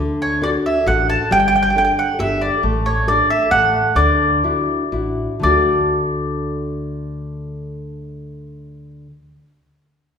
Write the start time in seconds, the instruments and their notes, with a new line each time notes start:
Already playing: upright bass D2, nylon-string guitar D3
0.22 mandolin C#5
0.41 nylon-string guitar D4 F#4 A4, mandolin D5
0.66 mandolin E5
0.86 upright bass A1, nylon-string guitar D4 F#4 A4, mandolin F#5
1.09 mandolin A5
1.31 upright bass G1, nylon-string guitar G3, mandolin G5
1.40 mandolin G5
1.48 mandolin G5
1.56 mandolin G5
1.63 mandolin G5
1.70 mandolin G5
1.75 nylon-string guitar D4 G4 A4, mandolin G5
1.85 mandolin G5
1.99 mandolin F#5
2.18 upright bass G1, nylon-string guitar D4 G4 A4, mandolin E5
2.41 mandolin D5
2.63 upright bass A1, nylon-string guitar A3
2.86 mandolin C#5
3.07 nylon-string guitar D4 G4 A4, mandolin D5
3.30 mandolin E5
3.51 upright bass A1, nylon-string guitar A3, mandolin F#5
3.95 upright bass D2, nylon-string guitar D3, mandolin D5
4.44 nylon-string guitar D4 E4 F#4
4.92 upright bass A1, nylon-string guitar D4 E4 F#4
5.40 nylon-string guitar D3 A3, mandolin D5
5.44 upright bass D2, nylon-string guitar D4 F#4
5.48 nylon-string guitar A4